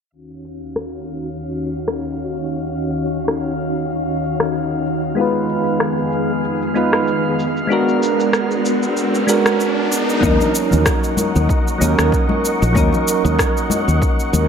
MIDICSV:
0, 0, Header, 1, 7, 480
1, 0, Start_track
1, 0, Key_signature, -6, "minor"
1, 0, Tempo, 631579
1, 94, Time_signature, 4, 2, 24, 8
1, 11007, End_track
2, 0, Start_track
2, 0, Title_t, "Synth texture"
2, 0, Program_c, 0, 99
2, 80, Note_on_c, 0, 89, 77
2, 81, Note_on_c, 0, 77, 80
2, 7777, Note_off_c, 0, 89, 0
2, 7778, Note_off_c, 0, 77, 0
2, 11007, End_track
3, 0, Start_track
3, 0, Title_t, "String machine"
3, 0, Program_c, 1, 50
3, 90, Note_on_c, 1, 51, 67
3, 93, Note_on_c, 1, 39, 74
3, 93, Note_on_c, 1, 61, 67
3, 94, Note_on_c, 1, 66, 75
3, 3903, Note_off_c, 1, 39, 0
3, 3903, Note_off_c, 1, 61, 0
3, 3904, Note_off_c, 1, 66, 0
3, 3937, Note_on_c, 1, 59, 70
3, 3937, Note_on_c, 1, 68, 75
3, 3938, Note_on_c, 1, 41, 73
3, 5582, Note_off_c, 1, 51, 0
3, 5599, Note_off_c, 1, 41, 0
3, 5599, Note_off_c, 1, 68, 0
3, 5621, Note_on_c, 1, 56, 66
3, 5621, Note_on_c, 1, 62, 72
3, 5621, Note_on_c, 1, 66, 80
3, 7745, Note_off_c, 1, 59, 0
3, 7756, Note_off_c, 1, 56, 0
3, 7756, Note_off_c, 1, 62, 0
3, 7756, Note_off_c, 1, 66, 0
3, 7774, Note_on_c, 1, 70, 74
3, 7774, Note_on_c, 1, 75, 66
3, 7774, Note_on_c, 1, 78, 68
3, 7774, Note_on_c, 1, 85, 79
3, 11007, Note_off_c, 1, 70, 0
3, 11007, Note_off_c, 1, 75, 0
3, 11007, Note_off_c, 1, 78, 0
3, 11007, Note_off_c, 1, 85, 0
3, 11007, End_track
4, 0, Start_track
4, 0, Title_t, "Synth keys"
4, 0, Program_c, 2, 88
4, 3915, Note_on_c, 2, 56, 84
4, 3925, Note_on_c, 2, 59, 79
4, 3935, Note_on_c, 2, 63, 76
4, 3948, Note_on_c, 2, 65, 78
4, 3960, Note_on_c, 2, 71, 93
4, 4070, Control_c, 2, 64, 127
4, 5099, Note_off_c, 2, 56, 0
4, 5104, Note_off_c, 2, 59, 0
4, 5109, Note_off_c, 2, 63, 0
4, 5115, Note_off_c, 2, 65, 0
4, 5121, Note_off_c, 2, 71, 0
4, 5124, Note_on_c, 2, 56, 72
4, 5130, Note_on_c, 2, 59, 67
4, 5134, Note_on_c, 2, 63, 68
4, 5143, Note_on_c, 2, 65, 67
4, 5145, Note_on_c, 2, 71, 84
4, 5596, Note_off_c, 2, 56, 0
4, 5599, Note_off_c, 2, 59, 0
4, 5601, Note_off_c, 2, 63, 0
4, 5606, Note_off_c, 2, 65, 0
4, 5607, Note_off_c, 2, 71, 0
4, 5623, Control_c, 2, 64, 0
4, 5757, Control_c, 2, 64, 127
4, 5831, Note_on_c, 2, 56, 82
4, 5842, Note_on_c, 2, 59, 76
4, 5853, Note_on_c, 2, 62, 83
4, 5864, Note_on_c, 2, 66, 77
4, 5874, Note_on_c, 2, 70, 96
4, 7021, Note_off_c, 2, 56, 0
4, 7026, Note_off_c, 2, 59, 0
4, 7032, Note_off_c, 2, 62, 0
4, 7038, Note_off_c, 2, 66, 0
4, 7043, Note_off_c, 2, 70, 0
4, 7044, Note_on_c, 2, 56, 86
4, 7048, Note_on_c, 2, 59, 75
4, 7055, Note_on_c, 2, 62, 74
4, 7061, Note_on_c, 2, 66, 74
4, 7066, Note_on_c, 2, 70, 87
4, 7176, Note_off_c, 2, 56, 0
4, 7178, Note_off_c, 2, 59, 0
4, 7181, Note_off_c, 2, 62, 0
4, 7184, Note_off_c, 2, 66, 0
4, 7187, Note_off_c, 2, 70, 0
4, 7757, Note_on_c, 2, 54, 87
4, 7770, Note_on_c, 2, 58, 84
4, 7779, Note_on_c, 2, 61, 77
4, 7784, Control_c, 2, 64, 0
4, 7792, Note_on_c, 2, 63, 82
4, 7802, Note_on_c, 2, 70, 97
4, 7906, Control_c, 2, 64, 127
4, 8940, Note_off_c, 2, 54, 0
4, 8947, Note_off_c, 2, 58, 0
4, 8951, Note_off_c, 2, 61, 0
4, 8955, Note_on_c, 2, 54, 72
4, 8958, Note_off_c, 2, 63, 0
4, 8962, Note_off_c, 2, 70, 0
4, 8965, Note_on_c, 2, 58, 67
4, 8976, Note_on_c, 2, 61, 66
4, 8988, Note_on_c, 2, 63, 69
4, 8999, Note_on_c, 2, 70, 80
4, 9659, Note_off_c, 2, 54, 0
4, 9664, Note_off_c, 2, 58, 0
4, 9669, Note_off_c, 2, 61, 0
4, 9674, Note_on_c, 2, 54, 80
4, 9675, Note_off_c, 2, 63, 0
4, 9681, Note_off_c, 2, 70, 0
4, 9686, Note_on_c, 2, 58, 78
4, 9696, Note_on_c, 2, 61, 84
4, 9707, Note_on_c, 2, 63, 75
4, 9717, Note_on_c, 2, 70, 94
4, 11007, Note_off_c, 2, 54, 0
4, 11007, Note_off_c, 2, 58, 0
4, 11007, Note_off_c, 2, 61, 0
4, 11007, Note_off_c, 2, 63, 0
4, 11007, Note_off_c, 2, 70, 0
4, 11007, End_track
5, 0, Start_track
5, 0, Title_t, "Fretless electric bass"
5, 0, Program_c, 3, 35
5, 7775, Note_on_c, 3, 39, 90
5, 7885, Note_off_c, 3, 39, 0
5, 8153, Note_on_c, 3, 39, 94
5, 8239, Note_off_c, 3, 39, 0
5, 8631, Note_on_c, 3, 39, 82
5, 8718, Note_off_c, 3, 39, 0
5, 8979, Note_on_c, 3, 39, 92
5, 9087, Note_off_c, 3, 39, 0
5, 9111, Note_on_c, 3, 39, 76
5, 9198, Note_off_c, 3, 39, 0
5, 9592, Note_on_c, 3, 34, 88
5, 9678, Note_off_c, 3, 34, 0
5, 9694, Note_on_c, 3, 39, 91
5, 9804, Note_off_c, 3, 39, 0
5, 10067, Note_on_c, 3, 39, 96
5, 10156, Note_off_c, 3, 39, 0
5, 10547, Note_on_c, 3, 39, 78
5, 10636, Note_off_c, 3, 39, 0
5, 10892, Note_on_c, 3, 39, 93
5, 11003, Note_off_c, 3, 39, 0
5, 11007, End_track
6, 0, Start_track
6, 0, Title_t, "Riser"
6, 0, Program_c, 4, 103
6, 3935, Note_on_c, 4, 60, 65
6, 7775, Note_off_c, 4, 60, 0
6, 11007, End_track
7, 0, Start_track
7, 0, Title_t, "Drums"
7, 101, Note_on_c, 9, 82, 37
7, 177, Note_off_c, 9, 82, 0
7, 233, Note_on_c, 9, 82, 27
7, 309, Note_off_c, 9, 82, 0
7, 338, Note_on_c, 9, 82, 66
7, 414, Note_off_c, 9, 82, 0
7, 474, Note_on_c, 9, 82, 31
7, 550, Note_off_c, 9, 82, 0
7, 577, Note_on_c, 9, 37, 70
7, 653, Note_off_c, 9, 37, 0
7, 713, Note_on_c, 9, 82, 29
7, 789, Note_off_c, 9, 82, 0
7, 820, Note_on_c, 9, 82, 67
7, 896, Note_off_c, 9, 82, 0
7, 951, Note_on_c, 9, 82, 27
7, 1027, Note_off_c, 9, 82, 0
7, 1191, Note_on_c, 9, 82, 30
7, 1267, Note_off_c, 9, 82, 0
7, 1298, Note_on_c, 9, 82, 63
7, 1374, Note_off_c, 9, 82, 0
7, 1427, Note_on_c, 9, 37, 72
7, 1430, Note_on_c, 9, 82, 29
7, 1503, Note_off_c, 9, 37, 0
7, 1506, Note_off_c, 9, 82, 0
7, 1773, Note_on_c, 9, 82, 65
7, 1849, Note_off_c, 9, 82, 0
7, 1908, Note_on_c, 9, 82, 26
7, 1984, Note_off_c, 9, 82, 0
7, 2018, Note_on_c, 9, 82, 41
7, 2094, Note_off_c, 9, 82, 0
7, 2150, Note_on_c, 9, 82, 26
7, 2226, Note_off_c, 9, 82, 0
7, 2257, Note_on_c, 9, 82, 65
7, 2333, Note_off_c, 9, 82, 0
7, 2390, Note_on_c, 9, 82, 32
7, 2466, Note_off_c, 9, 82, 0
7, 2493, Note_on_c, 9, 37, 76
7, 2497, Note_on_c, 9, 82, 42
7, 2569, Note_off_c, 9, 37, 0
7, 2573, Note_off_c, 9, 82, 0
7, 2633, Note_on_c, 9, 82, 27
7, 2709, Note_off_c, 9, 82, 0
7, 2737, Note_on_c, 9, 82, 69
7, 2813, Note_off_c, 9, 82, 0
7, 2870, Note_on_c, 9, 82, 28
7, 2946, Note_off_c, 9, 82, 0
7, 2974, Note_on_c, 9, 82, 39
7, 3050, Note_off_c, 9, 82, 0
7, 3111, Note_on_c, 9, 82, 29
7, 3187, Note_off_c, 9, 82, 0
7, 3215, Note_on_c, 9, 82, 71
7, 3291, Note_off_c, 9, 82, 0
7, 3344, Note_on_c, 9, 37, 78
7, 3347, Note_on_c, 9, 82, 32
7, 3420, Note_off_c, 9, 37, 0
7, 3423, Note_off_c, 9, 82, 0
7, 3455, Note_on_c, 9, 82, 42
7, 3531, Note_off_c, 9, 82, 0
7, 3693, Note_on_c, 9, 82, 69
7, 3769, Note_off_c, 9, 82, 0
7, 3826, Note_on_c, 9, 82, 30
7, 3902, Note_off_c, 9, 82, 0
7, 3934, Note_on_c, 9, 82, 42
7, 4010, Note_off_c, 9, 82, 0
7, 4067, Note_on_c, 9, 82, 27
7, 4143, Note_off_c, 9, 82, 0
7, 4172, Note_on_c, 9, 82, 72
7, 4248, Note_off_c, 9, 82, 0
7, 4305, Note_on_c, 9, 82, 34
7, 4381, Note_off_c, 9, 82, 0
7, 4409, Note_on_c, 9, 37, 75
7, 4413, Note_on_c, 9, 82, 46
7, 4485, Note_off_c, 9, 37, 0
7, 4489, Note_off_c, 9, 82, 0
7, 4545, Note_on_c, 9, 82, 31
7, 4621, Note_off_c, 9, 82, 0
7, 4649, Note_on_c, 9, 82, 75
7, 4725, Note_off_c, 9, 82, 0
7, 4789, Note_on_c, 9, 82, 30
7, 4865, Note_off_c, 9, 82, 0
7, 4895, Note_on_c, 9, 82, 41
7, 4971, Note_off_c, 9, 82, 0
7, 5030, Note_on_c, 9, 82, 31
7, 5106, Note_off_c, 9, 82, 0
7, 5135, Note_on_c, 9, 82, 73
7, 5211, Note_off_c, 9, 82, 0
7, 5266, Note_on_c, 9, 37, 70
7, 5270, Note_on_c, 9, 82, 32
7, 5342, Note_off_c, 9, 37, 0
7, 5346, Note_off_c, 9, 82, 0
7, 5378, Note_on_c, 9, 82, 44
7, 5454, Note_off_c, 9, 82, 0
7, 5618, Note_on_c, 9, 82, 72
7, 5694, Note_off_c, 9, 82, 0
7, 5753, Note_on_c, 9, 82, 28
7, 5829, Note_off_c, 9, 82, 0
7, 5860, Note_on_c, 9, 82, 40
7, 5936, Note_off_c, 9, 82, 0
7, 5995, Note_on_c, 9, 82, 29
7, 6071, Note_off_c, 9, 82, 0
7, 6101, Note_on_c, 9, 82, 78
7, 6177, Note_off_c, 9, 82, 0
7, 6231, Note_on_c, 9, 82, 34
7, 6307, Note_off_c, 9, 82, 0
7, 6333, Note_on_c, 9, 37, 72
7, 6336, Note_on_c, 9, 82, 46
7, 6409, Note_off_c, 9, 37, 0
7, 6412, Note_off_c, 9, 82, 0
7, 6468, Note_on_c, 9, 82, 29
7, 6544, Note_off_c, 9, 82, 0
7, 6577, Note_on_c, 9, 82, 72
7, 6653, Note_off_c, 9, 82, 0
7, 6709, Note_on_c, 9, 82, 30
7, 6785, Note_off_c, 9, 82, 0
7, 6816, Note_on_c, 9, 82, 42
7, 6892, Note_off_c, 9, 82, 0
7, 6951, Note_on_c, 9, 82, 33
7, 7027, Note_off_c, 9, 82, 0
7, 7057, Note_on_c, 9, 82, 73
7, 7133, Note_off_c, 9, 82, 0
7, 7188, Note_on_c, 9, 37, 73
7, 7191, Note_on_c, 9, 82, 31
7, 7264, Note_off_c, 9, 37, 0
7, 7267, Note_off_c, 9, 82, 0
7, 7298, Note_on_c, 9, 82, 40
7, 7374, Note_off_c, 9, 82, 0
7, 7539, Note_on_c, 9, 82, 74
7, 7615, Note_off_c, 9, 82, 0
7, 7672, Note_on_c, 9, 82, 30
7, 7748, Note_off_c, 9, 82, 0
7, 7774, Note_on_c, 9, 36, 97
7, 7774, Note_on_c, 9, 63, 77
7, 7779, Note_on_c, 9, 82, 38
7, 7850, Note_off_c, 9, 36, 0
7, 7850, Note_off_c, 9, 63, 0
7, 7855, Note_off_c, 9, 82, 0
7, 7905, Note_on_c, 9, 64, 73
7, 7911, Note_on_c, 9, 82, 28
7, 7981, Note_off_c, 9, 64, 0
7, 7987, Note_off_c, 9, 82, 0
7, 8018, Note_on_c, 9, 82, 68
7, 8094, Note_off_c, 9, 82, 0
7, 8140, Note_on_c, 9, 64, 74
7, 8145, Note_on_c, 9, 63, 57
7, 8150, Note_on_c, 9, 82, 31
7, 8216, Note_off_c, 9, 64, 0
7, 8221, Note_off_c, 9, 63, 0
7, 8226, Note_off_c, 9, 82, 0
7, 8251, Note_on_c, 9, 37, 78
7, 8254, Note_on_c, 9, 36, 94
7, 8255, Note_on_c, 9, 82, 46
7, 8327, Note_off_c, 9, 37, 0
7, 8330, Note_off_c, 9, 36, 0
7, 8331, Note_off_c, 9, 82, 0
7, 8388, Note_on_c, 9, 82, 30
7, 8464, Note_off_c, 9, 82, 0
7, 8490, Note_on_c, 9, 63, 86
7, 8495, Note_on_c, 9, 82, 70
7, 8566, Note_off_c, 9, 63, 0
7, 8571, Note_off_c, 9, 82, 0
7, 8632, Note_on_c, 9, 82, 29
7, 8708, Note_off_c, 9, 82, 0
7, 8734, Note_on_c, 9, 36, 96
7, 8740, Note_on_c, 9, 82, 39
7, 8810, Note_off_c, 9, 36, 0
7, 8816, Note_off_c, 9, 82, 0
7, 8874, Note_on_c, 9, 82, 31
7, 8950, Note_off_c, 9, 82, 0
7, 8973, Note_on_c, 9, 63, 68
7, 8980, Note_on_c, 9, 82, 71
7, 9049, Note_off_c, 9, 63, 0
7, 9056, Note_off_c, 9, 82, 0
7, 9109, Note_on_c, 9, 37, 75
7, 9113, Note_on_c, 9, 82, 32
7, 9185, Note_off_c, 9, 37, 0
7, 9189, Note_off_c, 9, 82, 0
7, 9214, Note_on_c, 9, 36, 92
7, 9223, Note_on_c, 9, 82, 40
7, 9290, Note_off_c, 9, 36, 0
7, 9299, Note_off_c, 9, 82, 0
7, 9341, Note_on_c, 9, 63, 81
7, 9417, Note_off_c, 9, 63, 0
7, 9462, Note_on_c, 9, 82, 73
7, 9538, Note_off_c, 9, 82, 0
7, 9595, Note_on_c, 9, 82, 30
7, 9671, Note_off_c, 9, 82, 0
7, 9689, Note_on_c, 9, 63, 99
7, 9694, Note_on_c, 9, 36, 94
7, 9702, Note_on_c, 9, 82, 44
7, 9765, Note_off_c, 9, 63, 0
7, 9770, Note_off_c, 9, 36, 0
7, 9778, Note_off_c, 9, 82, 0
7, 9824, Note_on_c, 9, 64, 76
7, 9834, Note_on_c, 9, 82, 29
7, 9900, Note_off_c, 9, 64, 0
7, 9910, Note_off_c, 9, 82, 0
7, 9939, Note_on_c, 9, 82, 76
7, 10015, Note_off_c, 9, 82, 0
7, 10068, Note_on_c, 9, 63, 61
7, 10075, Note_on_c, 9, 82, 31
7, 10144, Note_off_c, 9, 63, 0
7, 10151, Note_off_c, 9, 82, 0
7, 10174, Note_on_c, 9, 36, 100
7, 10178, Note_on_c, 9, 37, 80
7, 10181, Note_on_c, 9, 82, 43
7, 10250, Note_off_c, 9, 36, 0
7, 10254, Note_off_c, 9, 37, 0
7, 10257, Note_off_c, 9, 82, 0
7, 10315, Note_on_c, 9, 82, 32
7, 10391, Note_off_c, 9, 82, 0
7, 10411, Note_on_c, 9, 63, 97
7, 10420, Note_on_c, 9, 82, 74
7, 10487, Note_off_c, 9, 63, 0
7, 10496, Note_off_c, 9, 82, 0
7, 10554, Note_on_c, 9, 82, 31
7, 10630, Note_off_c, 9, 82, 0
7, 10654, Note_on_c, 9, 36, 97
7, 10657, Note_on_c, 9, 82, 42
7, 10730, Note_off_c, 9, 36, 0
7, 10733, Note_off_c, 9, 82, 0
7, 10789, Note_on_c, 9, 82, 32
7, 10865, Note_off_c, 9, 82, 0
7, 10893, Note_on_c, 9, 63, 66
7, 10897, Note_on_c, 9, 82, 69
7, 10969, Note_off_c, 9, 63, 0
7, 10973, Note_off_c, 9, 82, 0
7, 11007, End_track
0, 0, End_of_file